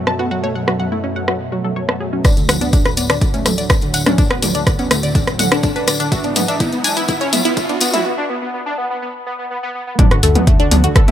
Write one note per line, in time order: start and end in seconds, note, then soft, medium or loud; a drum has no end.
0.00 2.21 F#2 medium
0.00 2.21 B2 medium
0.00 2.21 A3 medium
0.07 0.14 F#3 medium
0.07 0.14 A5 loud
0.07 cross-stick medium
0.19 0.26 B3 medium
0.19 0.26 F#4 medium
0.31 0.38 F#3 medium
0.31 0.42 F#4 loud
0.43 0.50 A3 medium
0.43 0.48 C#5 loud
0.55 0.62 F#3 medium
0.55 0.60 F#5 medium
0.68 0.74 F#3 medium
0.68 0.75 F#4 loud
0.68 cross-stick medium
0.80 0.86 F#3 medium
0.80 0.91 F#5 medium
0.92 0.98 A3 medium
0.92 0.99 E4 medium
1.04 1.11 F#3 medium
1.04 1.11 C#4 medium
1.16 1.23 F#3 medium
1.16 1.27 F#5 medium
1.28 1.35 F#3 medium
1.28 1.32 F#4 medium
1.28 cross-stick medium
1.52 1.59 F#3 medium
1.52 1.60 F#4 medium
1.64 1.71 F#3 medium
1.64 1.72 A4 medium
1.76 1.83 F#3 medium
1.76 1.84 C#5 medium
1.89 1.95 F#3 medium
1.89 1.96 A5 medium
1.89 cross-stick medium
2.00 2.07 F#3 medium
2.00 2.05 G#4 medium
2.13 2.19 F#3 medium
2.13 2.24 C#4 medium
2.24 6.08 D2 medium
2.24 6.08 A2 medium
2.24 8.01 F#3 medium
2.24 2.31 D4 loud
2.24 2.29 D4 medium
2.24 kick loud
2.24 cross-stick soft
2.24 closed hi-hat soft
2.24 tambourine soft
2.24 riser medium
2.37 2.44 D3 medium
2.37 closed hi-hat soft
2.37 tambourine soft
2.49 2.56 D3 medium
2.49 2.56 F#5 loud
2.49 cross-stick medium
2.49 open hi-hat loud
2.49 mid tom medium
2.49 tambourine medium
2.61 2.68 B3 medium
2.61 2.68 D4 loud
2.61 closed hi-hat soft
2.61 tambourine soft
2.73 2.80 D3 medium
2.73 2.84 D4 loud
2.73 kick loud
2.73 closed hi-hat soft
2.73 tambourine soft
2.85 2.92 D3 medium
2.85 2.90 B4 loud
2.85 cross-stick medium
2.85 closed hi-hat soft
2.85 tambourine soft
2.97 3.04 B3 medium
2.97 3.02 D5 medium
2.97 open hi-hat loud
2.97 tambourine medium
3.10 3.16 D3 medium
3.10 3.17 D4 loud
3.10 cross-stick medium
3.10 closed hi-hat soft
3.10 tambourine soft
3.21 3.28 D3 medium
3.21 3.33 D5 medium
3.21 kick loud
3.21 closed hi-hat soft
3.21 tambourine soft
3.34 3.40 A3 loud
3.34 3.41 C#4 medium
3.34 closed hi-hat soft
3.34 tambourine soft
3.46 3.52 D3 medium
3.46 3.53 A3 medium
3.46 cross-stick medium
3.46 open hi-hat loud
3.46 mid tom medium
3.46 tambourine medium
3.58 3.65 D3 medium
3.58 3.69 D5 medium
3.58 closed hi-hat soft
3.58 tambourine soft
3.70 3.74 D4 medium
3.70 kick loud
3.70 cross-stick medium
3.70 closed hi-hat soft
3.70 tambourine medium
3.81 3.89 D3 medium
3.81 closed hi-hat soft
3.81 tambourine soft
3.94 4.01 D3 medium
3.94 4.01 F#5 loud
3.94 open hi-hat loud
3.94 tambourine medium
4.06 4.13 C#4 medium
4.06 4.14 D4 loud
4.06 cross-stick medium
4.06 closed hi-hat soft
4.06 mid tom loud
4.06 tambourine soft
4.18 4.25 D3 medium
4.18 4.29 D4 loud
4.18 kick loud
4.18 closed hi-hat soft
4.18 tambourine soft
4.31 4.37 B3 medium
4.31 4.35 B4 loud
4.31 cross-stick medium
4.31 closed hi-hat soft
4.42 4.49 D3 medium
4.42 4.47 D5 medium
4.42 open hi-hat loud
4.42 mid tom medium
4.42 tambourine loud
4.55 4.61 D3 medium
4.55 4.62 D4 medium
4.55 closed hi-hat soft
4.55 tambourine soft
4.67 4.73 D3 medium
4.67 4.78 D5 medium
4.67 kick loud
4.67 cross-stick medium
4.67 closed hi-hat soft
4.67 tambourine medium
4.79 4.85 B3 medium
4.79 4.86 C#4 medium
4.79 closed hi-hat soft
4.79 tambourine soft
4.91 4.98 D3 medium
4.91 4.98 A3 medium
4.91 cross-stick medium
4.91 open hi-hat loud
4.91 tambourine medium
5.03 5.10 D3 medium
5.03 5.14 D5 medium
5.03 closed hi-hat soft
5.03 tambourine soft
5.15 5.22 D3 medium
5.15 5.20 D4 medium
5.15 kick loud
5.15 closed hi-hat soft
5.15 tambourine soft
5.27 cross-stick medium
5.27 closed hi-hat soft
5.27 tambourine soft
5.39 5.46 D3 medium
5.39 5.47 F#5 loud
5.39 open hi-hat loud
5.39 mid tom medium
5.39 tambourine loud
5.52 5.58 D3 medium
5.52 5.59 D4 loud
5.52 cross-stick medium
5.52 closed hi-hat soft
5.52 tambourine soft
5.63 5.70 D3 medium
5.63 5.75 D4 loud
5.63 kick loud
5.63 closed hi-hat soft
5.63 tambourine medium
5.76 5.82 D4 loud
5.76 5.80 B4 loud
5.76 closed hi-hat soft
5.76 tambourine soft
5.87 5.94 D3 medium
5.87 5.92 D5 medium
5.87 cross-stick soft
5.87 open hi-hat loud
5.87 tambourine loud
6.00 6.06 D3 medium
6.00 6.07 D4 loud
6.00 closed hi-hat soft
6.00 tambourine soft
6.12 8.03 G#2 medium
6.12 8.03 E3 medium
6.12 6.19 F#4 loud
6.12 6.23 E5 medium
6.12 kick loud
6.12 closed hi-hat soft
6.12 tambourine medium
6.24 6.31 B3 medium
6.24 6.31 D4 medium
6.24 closed hi-hat soft
6.24 tambourine soft
6.36 6.43 B3 medium
6.36 open hi-hat loud
6.36 mid tom medium
6.36 tambourine loud
6.48 6.55 D4 loud
6.48 6.59 E5 medium
6.48 closed hi-hat soft
6.48 tambourine soft
6.60 6.67 B3 medium
6.60 6.65 E4 medium
6.60 kick loud
6.60 closed hi-hat soft
6.60 tambourine medium
6.72 6.79 B3 medium
6.72 closed hi-hat soft
6.72 tambourine soft
6.84 6.91 D4 medium
6.84 6.92 G#5 loud
6.84 open hi-hat loud
6.84 tambourine medium
6.97 7.03 B3 medium
6.97 7.04 E4 loud
6.97 closed hi-hat soft
6.97 tambourine soft
7.08 7.15 B3 medium
7.08 7.20 E4 loud
7.08 kick loud
7.08 closed hi-hat soft
7.08 tambourine medium
7.21 7.27 C#4 medium
7.21 7.25 C#5 loud
7.21 closed hi-hat soft
7.21 tambourine soft
7.33 7.40 B3 medium
7.33 7.37 E5 medium
7.33 open hi-hat loud
7.33 mid tom medium
7.33 tambourine medium
7.45 7.52 B3 medium
7.45 7.52 E4 loud
7.45 closed hi-hat soft
7.45 tambourine soft
7.57 7.68 E5 medium
7.57 kick loud
7.57 closed hi-hat soft
7.57 tambourine medium
7.69 7.76 B3 medium
7.69 7.76 D4 medium
7.69 closed hi-hat soft
7.69 tambourine soft
7.80 7.88 B3 medium
7.80 7.89 B3 medium
7.80 open hi-hat loud
7.80 tambourine medium
7.94 8.00 E4 medium
7.94 8.04 E5 medium
7.94 closed hi-hat soft
7.94 mid tom medium
7.94 tambourine soft
8.05 8.12 B3 medium
8.18 8.24 D4 medium
8.30 8.36 B3 medium
8.42 8.48 B3 medium
8.54 8.61 B3 medium
8.66 8.73 D4 medium
8.78 8.85 B3 medium
8.90 8.97 B3 medium
9.02 9.09 B3 medium
9.26 9.33 B3 medium
9.39 9.45 B3 medium
9.50 9.57 B3 medium
9.63 9.69 B3 loud
9.75 9.82 B3 medium
9.87 9.94 B3 medium
9.99 11.11 D3 medium
9.99 11.11 A3 medium
9.99 10.06 D4 loud
9.99 10.03 D4 medium
9.99 11.11 F#4 loud
9.99 10.03 D5 medium
9.99 kick loud
9.99 closed hi-hat soft
9.99 mid tom medium
9.99 sub drop medium
10.11 10.18 D3 medium
10.11 10.22 F#4 medium
10.11 10.22 F#5 medium
10.11 cross-stick medium
10.11 closed hi-hat soft
10.23 10.40 D2 loud
10.23 10.30 D3 medium
10.23 10.34 A3 medium
10.23 10.34 A4 medium
10.23 open hi-hat loud
10.35 10.42 B3 loud
10.35 closed hi-hat soft
10.35 mid tom loud
10.47 10.54 D3 medium
10.47 10.58 A3 medium
10.47 10.58 A4 medium
10.47 kick loud
10.47 closed hi-hat soft
10.60 10.66 D3 medium
10.60 10.67 D4 loud
10.60 10.67 D5 medium
10.60 closed hi-hat soft
10.71 10.88 D2 medium
10.71 10.78 B3 loud
10.71 10.76 D4 medium
10.71 10.76 D5 medium
10.71 open hi-hat loud
10.71 mid tom loud
10.84 10.90 D3 medium
10.84 10.91 F#4 medium
10.84 10.91 F#5 medium
10.84 closed hi-hat soft
10.96 11.03 D3 medium
10.96 11.00 A4 loud
10.96 11.00 A5 medium
10.96 kick loud
10.96 cross-stick medium
10.96 closed hi-hat soft
11.08 11.11 E4 medium
11.08 11.11 E5 medium
11.08 closed hi-hat soft
11.08 mid tom loud